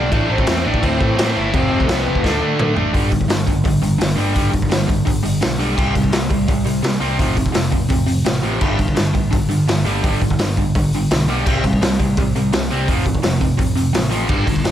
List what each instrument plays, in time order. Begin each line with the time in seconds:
Already playing: distorted electric guitar G2 D3 G3, lead electric guitar D4 D5
0.11 picked electric bass A1, distorted electric guitar A2 E3 A3, lead electric guitar D4 D5, kick, crash
0.28 picked electric bass A1, distorted electric guitar A2 E3 A3, lead electric guitar C5
0.32 lead electric guitar C4
0.38 lead electric guitar C4 C5, kick
0.46 picked electric bass E2, distorted electric guitar A2 E3 A3, snare, crash
0.64 picked electric bass A1, distorted electric guitar A2 E3 A3, lead electric guitar D4 D5
0.74 kick
0.81 picked electric bass D2, distorted electric guitar A2 E3 A3, lead electric guitar C4 C5, kick, crash
0.99 distorted electric guitar A2 E3 A3, picked electric bass A2, kick
1.17 distorted electric guitar A2 E3 A3, picked electric bass A2, snare, crash
1.34 picked electric bass G1, distorted electric guitar A2 E3 A3, lead electric guitar E4 E5
1.53 picked electric bass F1, distorted electric guitar F2 C3 F3, lead electric guitar C4 C5, kick, crash
1.69 picked electric bass F1, distorted electric guitar F2 C3 F3
1.80 lead electric guitar A4, kick
1.88 picked electric bass C2, distorted electric guitar F2 C3 F3, lead electric guitar B3 B4, snare, crash
2.06 picked electric bass F1, distorted electric guitar F2 C3 F3
2.15 kick
2.24 picked electric bass D2, distorted electric guitar D3 A3 D4, lead electric guitar A3 A4, kick, snare
2.40 distorted electric guitar D3 A3 D4, picked electric bass D3
2.58 distorted electric guitar D3 A3 D4, picked electric bass D3, mid tom
2.75 picked electric bass A1, distorted electric guitar D3 A3 D4, floor tom
2.92 picked electric bass G1, distorted electric guitar G2 D3 G3, kick, open hi-hat
3.10 picked electric bass G1, distorted electric guitar G2 D3, kick, open hi-hat
3.21 kick
3.29 picked electric bass G1, distorted electric guitar G2 D3, snare, open hi-hat
3.47 picked electric bass G1, distorted electric guitar G2 D3, kick, open hi-hat
3.64 picked electric bass G1, distorted electric guitar G2 D3, kick, open hi-hat
3.82 picked electric bass G1, distorted electric guitar G2 D3, open hi-hat
3.98 picked electric bass G1, distorted electric guitar G2 D3, snare, open hi-hat
4.16 picked electric bass G1, distorted electric guitar G2 D3 G3, open hi-hat
4.34 picked electric bass G1, distorted electric guitar G2 D3 G3, kick, open hi-hat
4.52 picked electric bass G1, distorted electric guitar G2 D3, kick, open hi-hat
4.62 kick
4.70 picked electric bass G1, distorted electric guitar G2 D3, snare, open hi-hat
4.88 distorted electric guitar G2 D3, kick, open hi-hat
5.05 picked electric bass G1, distorted electric guitar G2 D3, kick, open hi-hat
5.23 distorted electric guitar G2 D3, open hi-hat
5.41 picked electric bass B1, distorted electric guitar G2 D3, snare, open hi-hat
5.59 distorted electric guitar G2 D3 G3, open hi-hat
5.76 picked electric bass C2, distorted electric guitar C3 G3 C4, kick, crash
5.94 picked electric bass C2, distorted electric guitar C3 G3, kick, open hi-hat
6.04 kick
6.12 picked electric bass C2, distorted electric guitar C3 G3, snare, open hi-hat
6.29 picked electric bass C2, distorted electric guitar C3 G3, kick, open hi-hat
6.48 picked electric bass C2, distorted electric guitar C3 G3, kick, open hi-hat
6.65 picked electric bass C2, distorted electric guitar C3 G3, open hi-hat
6.82 picked electric bass C2, distorted electric guitar C3 G3, snare, open hi-hat
7.00 picked electric bass C2, distorted electric guitar C3 G3 C4, open hi-hat
7.17 picked electric bass F1, distorted electric guitar F2 C3 F3, kick, open hi-hat
7.37 picked electric bass F1, distorted electric guitar F2 C3, kick, open hi-hat
7.46 kick
7.52 picked electric bass F1, distorted electric guitar F2 C3, snare, open hi-hat
7.71 distorted electric guitar F2 C3, kick, open hi-hat
7.89 picked electric bass F1, distorted electric guitar F2 C3, kick, open hi-hat
8.06 distorted electric guitar F2 C3, open hi-hat
8.25 picked electric bass A1, distorted electric guitar F2 C3, snare, open hi-hat
8.42 distorted electric guitar F2 C3 F3, open hi-hat
8.60 picked electric bass G1, distorted electric guitar G2 D3 G3, kick, crash
8.77 picked electric bass G1, distorted electric guitar G2 D3, kick, open hi-hat
8.88 kick
8.95 picked electric bass G1, distorted electric guitar G2 D3, snare, open hi-hat
9.13 picked electric bass G1, distorted electric guitar G2 D3, kick, open hi-hat
9.31 picked electric bass G1, distorted electric guitar G2 D3, kick, open hi-hat
9.49 picked electric bass G1, distorted electric guitar G2 D3, open hi-hat
9.68 picked electric bass G1, distorted electric guitar G2 D3, snare, open hi-hat
9.85 picked electric bass G1, distorted electric guitar G2 D3 G3, open hi-hat
10.03 picked electric bass G1, distorted electric guitar G2 D3 G3, kick, open hi-hat
10.21 picked electric bass G1, distorted electric guitar G2 D3, kick, open hi-hat
10.30 kick
10.39 picked electric bass G1, distorted electric guitar G2 D3, snare, open hi-hat
10.57 distorted electric guitar G2 D3, kick, open hi-hat
10.75 picked electric bass G1, distorted electric guitar G2 D3, kick, open hi-hat
10.93 distorted electric guitar G2 D3, open hi-hat
11.10 picked electric bass B1, distorted electric guitar G2 D3, snare, open hi-hat
11.28 distorted electric guitar G2 D3 G3, open hi-hat
11.46 picked electric bass C2, distorted electric guitar C3 G3 C4, kick, crash
11.64 picked electric bass C2, distorted electric guitar C3 G3, kick, open hi-hat
11.73 kick
11.81 picked electric bass C2, distorted electric guitar C3 G3, snare, open hi-hat
11.99 picked electric bass C2, distorted electric guitar C3 G3, kick, open hi-hat
12.17 picked electric bass C2, distorted electric guitar C3 G3, kick, open hi-hat
12.35 picked electric bass C2, distorted electric guitar C3 G3, open hi-hat
12.52 picked electric bass C2, distorted electric guitar C3 G3, snare, open hi-hat
12.70 picked electric bass C2, distorted electric guitar C3 G3 C4, open hi-hat
12.88 picked electric bass F1, distorted electric guitar F2 C3 F3, kick, open hi-hat
13.06 picked electric bass F1, distorted electric guitar F2 C3, kick, open hi-hat
13.15 kick
13.23 picked electric bass F1, distorted electric guitar F2 C3, snare, open hi-hat
13.41 distorted electric guitar F2 C3, kick, open hi-hat
13.58 picked electric bass F1, distorted electric guitar F2 C3, kick, open hi-hat
13.75 distorted electric guitar F2 C3, open hi-hat
13.93 picked electric bass A1, distorted electric guitar F2 C3, snare, open hi-hat
14.10 distorted electric guitar F2 C3 F3, open hi-hat
14.29 picked electric bass G1, distorted electric guitar G2 D3 G3, kick, crash
14.46 picked electric bass G1, distorted electric guitar G2 D3, kick, open hi-hat
14.56 kick
14.64 picked electric bass G1, distorted electric guitar G2 D3, snare, open hi-hat